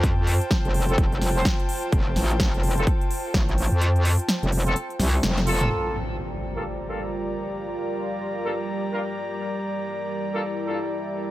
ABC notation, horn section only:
X:1
M:4/4
L:1/16
Q:"Swing 16ths" 1/4=127
K:Gdor
V:1 name="Horn section"
z6 z [CFA] z3 [CFc] z4 | z6 z [CFA] z8 | z6 z [CFA] z6 [B,FA]2- | [B,FA]2 z4 z [G,,B,FA] z2 [G,,B,FA] z4 z |
z6 z [G,,B,FA] z3 [G,,B,FB] z4 | z6 z [G,,B,FA] z2 [G,,B,FA] z4 z |]